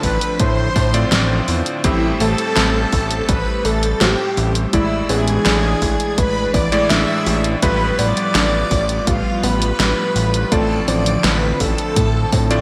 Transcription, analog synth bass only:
0.04 0.18 A1 loud
0.40 0.69 A2 medium
0.76 1.05 A2 loud
1.12 1.41 A1 loud
1.48 1.63 E2 medium
1.84 2.14 A1 loud
2.21 2.35 A1 medium
2.57 2.86 A1 medium
2.93 3.22 A1 loud
3.29 3.44 A1 medium
3.65 3.94 A1 loud
4.01 4.16 A1 loud
4.37 4.67 A1 medium
4.73 5.03 A1 medium
5.10 5.39 A1 loud
5.46 5.75 A1 loud
5.82 5.97 A1 loud
6.18 6.47 A1 medium
6.54 6.69 A1 medium
6.91 7.05 A1 medium
7.27 7.56 A1 medium
7.63 7.92 A1 loud
7.99 8.14 A1 medium
8.35 8.64 A1 medium
8.71 9.00 A1 loud
9.07 9.22 A1 medium
9.43 9.73 A1 loud
9.79 9.94 A1 loud
10.16 10.45 A1 medium
10.52 10.81 A1 medium
10.88 11.17 A1 loud
11.24 11.53 A1 loud
11.60 11.75 A1 loud
11.96 12.26 A2 medium
12.33 12.61 A2 loud

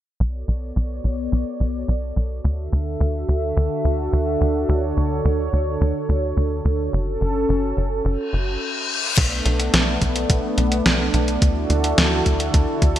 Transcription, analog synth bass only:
0.20 0.44 B1 loud
0.48 0.72 B1 medium
0.76 1.00 B1 medium
1.04 1.28 B1 medium
1.32 1.44 B1 medium
1.60 1.85 B1 medium
1.88 2.13 B1 medium
2.16 2.41 B1 medium
2.44 2.69 D2 medium
2.73 2.97 D2 medium
3.01 3.25 D2 medium
3.29 3.53 D2 medium
3.57 3.69 D2 medium
3.85 4.09 D2 medium
4.13 4.37 D2 medium
4.41 4.65 D2 medium
4.69 4.93 D2 loud
4.97 5.21 D2 medium
5.25 5.49 D2 medium
5.53 5.77 D2 medium
5.81 5.93 D2 medium
6.09 6.33 D2 medium
6.37 6.61 D2 medium
6.65 6.89 D2 medium
6.93 7.17 F#1 loud
7.21 7.45 F#1 medium
7.49 7.73 F#1 medium
7.77 8.01 F#1 medium
8.05 8.17 F#1 loud
8.33 8.57 F#1 medium
9.18 9.42 B1 loud
9.46 9.70 B1 medium
9.74 9.98 B1 medium
10.02 10.26 B1 medium
10.30 10.42 B1 medium
10.58 10.82 B1 medium
10.86 11.10 B1 medium
11.14 11.38 B1 medium
11.42 11.66 D2 medium
11.70 11.94 D2 medium
11.98 12.22 D2 loud
12.26 12.50 D2 medium
12.54 12.66 D2 loud
12.82 12.99 D2 medium

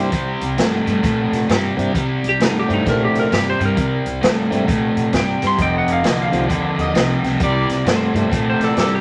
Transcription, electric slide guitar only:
0.00 0.42 C5 medium
2.29 2.42 G4 medium
2.44 2.57 D#4 medium
2.59 2.72 G4 medium
2.73 2.87 D#4 medium
2.89 3.02 A#4 medium
3.05 3.17 G4 medium
3.19 3.33 A#4 medium
3.34 3.47 G4 medium
3.50 3.63 C5 medium
3.65 4.08 A#4 medium
5.17 5.44 G5 medium
5.47 5.60 C6 medium
5.62 5.75 G5 medium
5.78 5.91 F#5 medium
5.92 6.05 F5 medium
6.08 6.21 D#5 medium
6.22 6.45 F5 medium
7.89 8.46 C5 medium
8.50 8.63 C5 medium
8.64 8.78 A4 medium
8.80 8.93 A4 medium
8.95 9.01 G4 medium

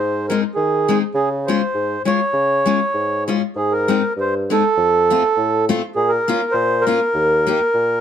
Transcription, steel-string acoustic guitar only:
0.30 0.42 G#3 medium
0.30 0.42 C4 medium
0.30 0.43 D#4 medium
0.89 1.01 G#3 medium
0.89 1.01 C4 soft
0.89 1.02 D#4 medium
1.48 1.60 G#3 medium
1.48 1.61 C#4 soft
1.48 1.61 F4 medium
2.05 2.19 G#3 medium
2.05 2.19 C#4 soft
2.05 2.20 F4 medium
2.66 2.79 G#3 soft
2.66 2.80 C#4 soft
2.66 2.80 F4 medium
3.28 3.41 G#3 medium
3.28 3.41 C#4 medium
3.28 3.41 F4 medium
3.88 4.01 G#3 medium
3.88 4.02 C4 soft
3.88 4.02 D#4 soft
4.50 4.62 G#3 medium
4.50 4.62 C4 soft
4.50 4.63 D#4 medium
5.10 5.22 A3 medium
5.10 5.22 C4 medium
5.10 5.22 F4 medium
5.69 5.81 A3 medium
5.69 5.81 C4 medium
5.69 5.81 F4 medium
6.28 6.39 A#3 medium
6.28 6.40 C#4 medium
6.28 6.40 F4 medium
6.87 6.98 A#3 medium
6.87 6.99 C#4 soft
6.87 6.99 F4 medium
7.47 7.58 A#3 medium
7.47 7.59 D#4 medium
7.47 7.59 G4 medium

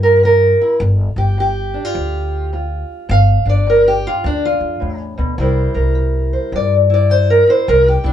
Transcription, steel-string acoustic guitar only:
0.00 0.19 C3 medium
0.00 3.10 G3 soft
0.00 0.60 E4 soft
0.00 0.82 G4 soft
0.00 0.24 A#4 medium
0.23 0.76 C3 medium
0.23 0.81 A#4 loud
0.61 0.79 E4 soft
0.81 1.34 G2 medium
0.81 1.17 F4 medium
1.18 1.38 G4 medium
1.38 1.91 G2 medium
1.38 2.53 G4 loud
1.74 1.85 D4 soft
1.85 2.52 F4 soft
1.94 2.48 G2 medium
2.53 3.06 G2 medium
2.53 3.08 F4 soft
3.09 3.62 G2 medium
3.09 3.49 F5 loud
3.46 3.67 D4 soft
3.46 3.68 D5 medium
3.67 4.20 G2 medium
3.67 3.87 A#4 medium
3.88 4.06 G4 loud
4.07 4.25 F4 medium
4.24 4.77 G2 medium
4.24 4.44 D4 medium
4.45 5.02 F4 medium
4.80 5.17 A2 medium
5.18 5.38 B2 medium
5.38 5.92 C3 medium
5.38 8.13 G3 soft
5.38 6.89 E4 medium
5.38 5.74 A#4 soft
5.38 6.33 C5 soft
5.74 7.29 A#4 soft
5.95 6.49 C3 medium
6.33 6.55 C5 soft
6.53 7.06 C3 medium
6.53 6.74 D5 loud
6.90 7.46 E4 soft
6.90 7.11 D5 medium
7.10 7.64 C3 medium
7.10 7.30 C5 loud
7.30 7.49 A#4 medium
7.47 7.66 E4 soft
7.47 7.69 C5 medium
7.68 8.13 C3 medium
7.68 7.88 A#4 loud
7.88 8.07 G4 medium
8.04 8.13 D4 medium
8.04 8.13 E4 soft

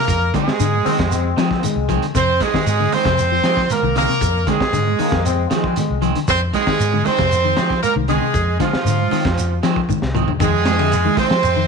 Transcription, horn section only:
0.00 0.32 A#4 loud
0.36 1.35 G#4 medium
2.18 2.41 C5 loud
2.42 2.94 G#4 loud
2.94 3.71 C5 loud
3.72 3.97 A#4 medium
3.98 4.45 A#4 loud
4.50 5.48 G#4 loud
6.29 6.41 C5 loud
6.55 7.03 G#4 loud
7.05 7.83 C5 loud
7.82 7.94 A#4 medium
8.09 8.57 G#4 medium
8.61 9.60 F4 medium
10.42 11.14 G#4 loud
11.19 11.67 C5 loud

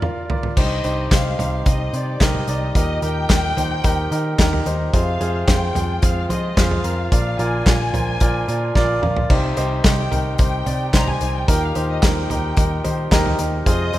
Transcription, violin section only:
0.00 0.31 D5 medium
0.58 1.08 D#5 medium
1.13 1.67 F5 medium
1.68 1.93 D#5 medium
1.95 2.22 D5 medium
2.23 2.76 D#5 medium
2.78 3.02 D#5 medium
3.05 4.63 G5 loud
4.94 5.45 F5 medium
5.49 6.03 G5 medium
6.04 6.30 F5 medium
6.31 6.56 D#5 medium
6.59 7.12 F5 medium
7.13 7.38 F5 medium
7.40 9.03 G#5 medium
9.85 10.36 G5 medium
10.40 10.91 G5 medium
10.95 11.08 A#5 medium
11.09 11.35 G#5 medium
11.35 11.49 G5 medium
11.50 11.62 G5 medium
11.63 11.90 F5 medium
11.90 12.02 D#5 medium
12.04 13.08 G5 medium
13.68 13.99 D#5 medium

